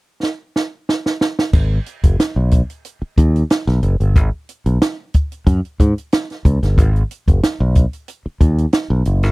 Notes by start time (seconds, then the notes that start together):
0.23 snare
0.56 snare
0.89 snare
1.06 snare
1.21 snare
1.39 snare
1.53 G#1, kick, crash
1.86 closed hi-hat
2.04 F#1, kick, closed hi-hat
2.19 muted fingered electric bass stroke, snare, closed hi-hat
2.36 B1
2.51 kick, closed hi-hat
2.70 closed hi-hat
2.85 closed hi-hat
3.02 muted fingered electric bass stroke
3.18 D#2, kick, closed hi-hat
3.36 closed hi-hat
3.50 snare, closed hi-hat
3.67 B1, snare, closed hi-hat
3.83 F#1, closed hi-hat
4.00 G1, closed hi-hat
4.16 G#1, kick, closed hi-hat
4.49 closed hi-hat
4.66 B1, closed hi-hat
4.82 snare, closed hi-hat
5.14 kick, closed hi-hat
5.32 closed hi-hat
5.47 F#2, kick, closed hi-hat
5.65 closed hi-hat
5.80 G#2, kick, closed hi-hat
5.98 closed hi-hat
6.12 snare, closed hi-hat
6.30 snare, closed hi-hat
6.45 C#2, kick, closed hi-hat
6.63 G1, snare, closed hi-hat
6.78 G#1, kick, closed hi-hat
6.96 closed hi-hat
7.11 closed hi-hat
7.28 F#1, kick, closed hi-hat
7.43 muted fingered electric bass stroke, snare, closed hi-hat
7.60 B1
7.75 kick, closed hi-hat
7.93 closed hi-hat
8.08 closed hi-hat
8.26 muted fingered electric bass stroke
8.41 D#2, kick, closed hi-hat
8.58 closed hi-hat
8.73 snare, closed hi-hat
8.90 B1
9.05 F#1, closed hi-hat
9.23 G1, snare, closed hi-hat